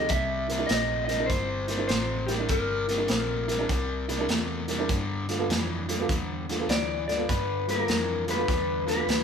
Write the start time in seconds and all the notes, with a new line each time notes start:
0.00 G4 A4
0.09 C2 C3 G3 E5, kick, snare, closed hi-hat
0.48 C3 G3 E4 A#4, snare, closed hi-hat
0.58 D4 E4 A#4
0.67 A#1 D#5, closed hi-hat
0.71 C3 A3, snare
1.05 E4 A#4 D#5, closed hi-hat
1.09 C3 G3, snare
1.19 D4 E4 A#4
1.26 G1 C3 G3 C5, kick, closed hi-hat
1.31 snare
1.68 C3 G3 E4 A#4, snare, closed hi-hat
1.77 D4 E4 A#4
1.88 A1 C3 A3 C5, snare, closed hi-hat
2.26 C3 G3 E4 G4 A#4, snare, closed hi-hat
2.39 D4 E4 A#4
2.49 G1 C3 G3 A#4, kick, snare, closed hi-hat
2.88 C3 G3 E4 A#4, snare, closed hi-hat
2.97 D4 E4 A#4
3.08 A#1 C3 A3, snare, closed hi-hat
3.48 C3 G3 E4 A#4, snare, closed hi-hat
3.59 D4 E4 A#4
3.69 C2 C3 G3, kick, snare, closed hi-hat
4.08 C3 G3 E4 A#4, snare, closed hi-hat
4.19 D4 E4 A#4
4.28 E2 C3 A3, snare, closed hi-hat
4.68 C3 G3 E4 A#4, snare, closed hi-hat
4.79 D4 E4 A#4
4.89 G2 D3, kick, snare, closed hi-hat
5.29 G2 D3 F4 A4, snare, closed hi-hat
5.38 B3 F4 A4
5.49 F2 G2 E3, snare, closed hi-hat
5.87 G2 D3 F4 A4, snare, closed hi-hat
5.99 B3 F4 A4
6.09 E2 G2 D3, kick, snare, closed hi-hat
6.49 G2 D3 F4 A4, snare, closed hi-hat
6.59 B3 F4 A4
6.69 D2 G2 E3 D5, snare, closed hi-hat
7.07 G2 D3 F4 A4 D5, snare, closed hi-hat
7.17 B3 F4 A4
7.29 G2 D3 B4, kick, snare, closed hi-hat
7.66 G2 D3 F4 A4 A#4, snare, closed hi-hat
7.76 B3 F4 A4
7.88 F2 G2 E3, snare, closed hi-hat
8.26 G2 D3 F4 A4, snare, closed hi-hat
8.31 B4
8.36 B3 F4 A4
8.48 E2 G2 D3, kick, snare, closed hi-hat
8.85 G2 D3 F4 A4 B4, closed hi-hat
8.90 snare
8.95 B3 F4 A4
9.07 D2 G2 E3, snare, closed hi-hat